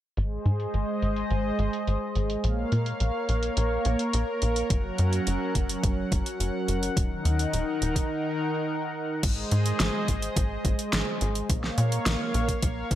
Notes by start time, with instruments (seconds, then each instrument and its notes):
0.17 analog synth bass G#1, analog synth pad G#3 G#4 C5 D#5, closed hi-hat
0.46 analog synth bass G#2, closed hi-hat
0.60 closed hi-hat
0.74 analog synth bass G#1, closed hi-hat
1.02 analog synth bass G#1, closed hi-hat
1.16 closed hi-hat
1.30 analog synth bass G#1, closed hi-hat
1.59 analog synth bass G#1, closed hi-hat
1.73 closed hi-hat
1.87 analog synth bass G#1, closed hi-hat
2.15 analog synth bass G#1, closed hi-hat
2.30 closed hi-hat
2.44 analog synth bass A#1, analog synth pad A#3 A#4 C#5 F5, closed hi-hat
2.72 analog synth bass A#2, closed hi-hat
2.86 closed hi-hat
3.00 analog synth bass A#1, closed hi-hat
3.29 analog synth bass A#1, closed hi-hat
3.43 closed hi-hat
3.57 analog synth bass A#1, closed hi-hat
3.85 analog synth bass A#1, closed hi-hat
3.99 closed hi-hat
4.13 analog synth bass A#1, closed hi-hat
4.42 analog synth bass A#1, closed hi-hat
4.56 closed hi-hat
4.70 analog synth bass F#1, analog synth pad F#3 C#4 F#5, kick, closed hi-hat
4.98 analog synth bass F#2, closed hi-hat
5.13 closed hi-hat
5.27 analog synth bass F#1, closed hi-hat
5.55 analog synth bass F#1, kick, closed hi-hat
5.69 closed hi-hat
5.83 analog synth bass F#1, kick, closed hi-hat
6.12 analog synth bass F#1, kick, closed hi-hat
6.26 closed hi-hat
6.40 analog synth bass F#1, closed hi-hat
6.68 analog synth bass F#1, closed hi-hat
6.83 closed hi-hat
6.97 analog synth bass D#1, analog synth pad D#3 D#4 A#4, kick, closed hi-hat
7.25 analog synth bass D#2, closed hi-hat
7.39 closed hi-hat
7.53 analog synth bass D#1, closed hi-hat
7.82 analog synth bass D#1, closed hi-hat
7.96 kick, closed hi-hat
9.23 analog synth bass G#1, analog synth pad G#3 G#4 C5 D#5, kick, closed hi-hat, crash
9.51 analog synth bass G#2, closed hi-hat
9.66 closed hi-hat
9.80 analog synth bass G#1, snare, closed hi-hat
10.08 analog synth bass G#1, kick, closed hi-hat
10.22 closed hi-hat
10.36 analog synth bass G#1, kick, closed hi-hat
10.65 analog synth bass G#1, kick, closed hi-hat
10.79 closed hi-hat
10.93 analog synth bass G#1, snare, closed hi-hat
11.21 analog synth bass G#1, closed hi-hat
11.35 closed hi-hat
11.49 analog synth bass A#1, analog synth pad A#3 A#4 C#5 F5, kick, closed hi-hat
11.64 snare
11.78 analog synth bass A#2, closed hi-hat
11.92 closed hi-hat
12.06 analog synth bass A#1, snare, closed hi-hat
12.34 analog synth bass A#1, closed hi-hat
12.49 kick, closed hi-hat
12.62 analog synth bass A#1, kick, closed hi-hat
12.91 analog synth bass A#1, kick, closed hi-hat